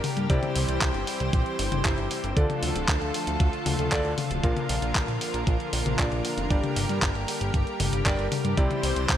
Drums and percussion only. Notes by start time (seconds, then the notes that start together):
0.04 open hi-hat, high tom
0.17 closed hi-hat
0.30 kick, closed hi-hat
0.43 closed hi-hat, high tom
0.56 open hi-hat
0.69 closed hi-hat
0.81 kick, clap, closed hi-hat
0.94 closed hi-hat
1.07 open hi-hat
1.20 closed hi-hat
1.33 kick, closed hi-hat
1.46 closed hi-hat
1.59 open hi-hat
1.72 closed hi-hat, high tom
1.85 kick, clap, closed hi-hat
1.98 closed hi-hat
2.11 open hi-hat
2.24 closed hi-hat
2.37 kick, closed hi-hat
2.50 closed hi-hat, high tom
2.63 open hi-hat
2.76 closed hi-hat
2.88 kick, clap, closed hi-hat
3.02 closed hi-hat
3.14 open hi-hat
3.27 closed hi-hat
3.40 kick, closed hi-hat
3.53 closed hi-hat
3.66 open hi-hat, high tom
3.79 closed hi-hat
3.92 kick, clap, closed hi-hat
4.05 closed hi-hat
4.18 open hi-hat, high tom
4.31 closed hi-hat
4.44 kick, closed hi-hat
4.57 closed hi-hat, high tom
4.69 open hi-hat
4.82 closed hi-hat
4.95 kick, clap, closed hi-hat
5.08 closed hi-hat
5.21 open hi-hat
5.34 closed hi-hat
5.47 kick, closed hi-hat
5.60 closed hi-hat
5.73 open hi-hat
5.86 closed hi-hat, high tom
5.99 kick, clap, closed hi-hat
6.12 closed hi-hat
6.25 open hi-hat
6.38 closed hi-hat
6.51 kick, closed hi-hat
6.64 closed hi-hat, high tom
6.76 open hi-hat
6.89 closed hi-hat
7.02 kick, clap, closed hi-hat
7.15 closed hi-hat
7.28 open hi-hat
7.41 closed hi-hat
7.54 kick, closed hi-hat
7.67 closed hi-hat
7.80 open hi-hat, high tom
7.93 closed hi-hat
8.06 kick, clap, closed hi-hat
8.19 closed hi-hat
8.32 open hi-hat, high tom
8.45 closed hi-hat
8.57 kick, closed hi-hat
8.71 closed hi-hat, high tom
8.83 open hi-hat
8.96 closed hi-hat
9.09 kick, clap, closed hi-hat